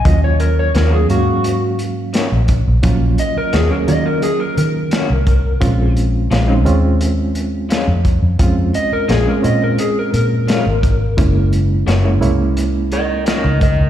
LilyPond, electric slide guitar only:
\new Staff \with { instrumentName = "Electric slide guitar" } { \time 4/4 \key bes \minor \tempo 4 = 86 ees''16 des''16 bes'16 des''16 bes'16 aes'16 ges'4 r4. | r8 ees''16 bes'16 aes'16 bes'16 ees''16 bes'16 aes'16 bes'16 bes'4.~ | bes'8 r2. r8 | r8 ees''16 bes'16 aes'16 bes'16 ees''16 bes'16 aes'16 bes'16 bes'4.~ |
bes'8 r2 <bes' ees''>8 <bes' ees''>8 <bes' ees''>8 | }